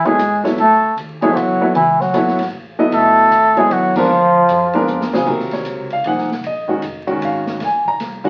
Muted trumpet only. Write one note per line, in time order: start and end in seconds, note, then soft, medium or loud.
0.06 0.45 G#4 loud
0.59 0.95 A4 loud
1.22 1.34 G#4 medium
1.33 1.38 F4 medium
1.33 1.75 F#4 medium
1.76 2.03 E4 medium
2.01 2.48 F#4 medium
2.94 3.60 A4 loud
3.58 3.74 G#4 medium
3.73 3.97 F#4 medium
3.99 5.10 F4 medium